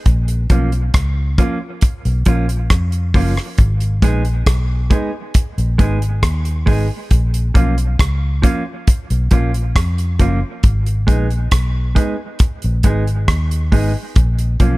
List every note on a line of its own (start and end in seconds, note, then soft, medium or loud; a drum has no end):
0.06 0.48 A#1 loud
0.06 kick medium
0.06 closed hi-hat medium
0.28 closed hi-hat medium
0.50 0.92 B1 medium
0.50 0.69 F3 medium
0.50 0.70 A#3 medium
0.50 0.70 C#4 medium
0.50 0.70 F4 medium
0.50 kick medium
0.50 closed hi-hat medium
0.72 closed hi-hat soft
0.94 1.36 C#2 medium
0.94 kick loud
0.94 cross-stick loud
0.94 closed hi-hat medium
1.38 1.57 F3 medium
1.38 1.58 A#3 medium
1.38 1.58 C#4 medium
1.38 1.58 F4 medium
1.38 kick loud
1.38 closed hi-hat medium
1.81 kick loud
1.81 closed hi-hat medium
2.05 2.25 B1 medium
2.05 closed hi-hat soft
2.25 2.68 A#1 medium
2.25 2.45 F3 medium
2.25 2.46 A#3 medium
2.25 2.46 C#4 medium
2.25 2.46 F4 medium
2.25 kick medium
2.25 closed hi-hat medium
2.49 closed hi-hat medium
2.70 3.12 F2 medium
2.70 kick medium
2.70 cross-stick medium
2.70 closed hi-hat medium
2.92 closed hi-hat soft
3.14 3.36 F#1 medium
3.14 3.34 F3 medium
3.14 3.34 A#3 medium
3.14 3.34 C#4 medium
3.14 3.34 F4 medium
3.14 kick medium
3.14 open hi-hat medium
3.37 cross-stick medium
3.58 4.00 G#1 loud
3.58 kick medium
3.58 closed hi-hat medium
3.80 closed hi-hat soft
4.02 4.44 A#1 loud
4.02 4.22 G#3 medium
4.02 4.22 B3 medium
4.02 4.22 D#4 medium
4.02 4.23 G#4 loud
4.02 kick medium
4.02 closed hi-hat medium
4.25 closed hi-hat soft
4.46 4.89 B1 medium
4.46 kick loud
4.46 cross-stick loud
4.46 closed hi-hat loud
4.90 5.10 G#3 medium
4.90 5.10 B3 medium
4.90 5.10 D#4 medium
4.90 5.11 G#4 medium
4.90 kick loud
4.90 closed hi-hat medium
5.34 kick loud
5.34 closed hi-hat medium
5.58 5.78 A#1 medium
5.58 closed hi-hat soft
5.78 6.21 G#1 medium
5.78 5.98 G#3 medium
5.78 5.98 B3 medium
5.78 5.98 D#4 medium
5.78 5.99 G#4 medium
5.78 kick loud
5.78 closed hi-hat medium
6.02 closed hi-hat soft
6.23 6.65 D#2 medium
6.23 kick medium
6.23 cross-stick loud
6.23 closed hi-hat medium
6.45 closed hi-hat soft
6.66 6.89 G#1 medium
6.66 6.86 G#3 medium
6.66 6.86 B3 medium
6.66 6.86 D#4 medium
6.66 6.87 G#4 medium
6.66 kick medium
6.66 open hi-hat medium
7.11 7.53 A#1 medium
7.11 kick medium
7.11 closed hi-hat medium
7.34 closed hi-hat medium
7.54 7.97 B1 medium
7.54 7.74 F3 medium
7.54 7.75 A#3 medium
7.54 7.75 C#4 medium
7.54 7.75 F4 medium
7.54 kick medium
7.54 closed hi-hat medium
7.78 closed hi-hat soft
7.99 8.41 C#2 medium
7.99 kick loud
7.99 cross-stick loud
7.99 closed hi-hat medium
8.42 8.62 F3 medium
8.42 8.62 A#3 medium
8.42 8.63 C#4 medium
8.42 8.63 F4 medium
8.42 kick loud
8.42 closed hi-hat medium
8.87 kick loud
8.87 closed hi-hat medium
9.10 9.31 B1 medium
9.10 closed hi-hat soft
9.31 9.73 A#1 medium
9.31 9.50 F3 medium
9.31 9.51 A#3 medium
9.31 9.51 C#4 medium
9.31 9.51 F4 medium
9.31 kick medium
9.31 closed hi-hat medium
9.54 closed hi-hat soft
9.76 10.17 F2 medium
9.76 kick medium
9.76 cross-stick medium
9.76 closed hi-hat medium
9.98 closed hi-hat soft
10.19 10.41 F#1 medium
10.19 10.39 F3 medium
10.19 10.39 A#3 medium
10.19 10.39 C#4 medium
10.19 10.40 F4 medium
10.19 kick medium
10.19 closed hi-hat medium
10.63 11.05 G#1 medium
10.63 kick loud
10.63 closed hi-hat medium
10.86 closed hi-hat medium
11.07 11.50 A#1 medium
11.07 11.26 G#3 medium
11.07 11.27 B3 medium
11.07 11.27 D#4 medium
11.07 11.27 G#4 medium
11.07 kick medium
11.07 closed hi-hat medium
11.30 closed hi-hat soft
11.51 11.94 B1 medium
11.51 kick loud
11.51 cross-stick loud
11.51 closed hi-hat loud
11.95 12.15 G#3 medium
11.95 12.15 B3 medium
11.95 12.15 D#4 medium
11.95 12.15 G#4 medium
11.95 kick loud
11.95 closed hi-hat medium
12.39 kick loud
12.39 closed hi-hat medium
12.62 12.84 A#1 medium
12.62 closed hi-hat soft
12.83 13.26 G#1 medium
12.83 13.03 G#3 medium
12.83 13.03 B3 medium
12.83 13.04 D#4 medium
12.83 13.04 G#4 medium
12.83 kick medium
12.83 closed hi-hat medium
13.07 closed hi-hat soft
13.28 13.70 D#2 medium
13.28 kick loud
13.28 cross-stick loud
13.28 closed hi-hat medium
13.51 closed hi-hat medium
13.72 13.94 G#1 medium
13.72 13.91 G#3 medium
13.72 13.91 B3 medium
13.72 13.92 D#4 medium
13.72 13.92 G#4 medium
13.72 kick medium
13.72 open hi-hat medium
14.16 14.58 A#1 loud
14.16 kick loud
14.16 closed hi-hat medium
14.39 closed hi-hat medium
14.60 14.78 B1 medium
14.60 14.78 F3 medium
14.60 14.78 A#3 medium
14.60 14.78 C#4 medium
14.60 14.78 F4 medium
14.60 kick medium
14.60 closed hi-hat medium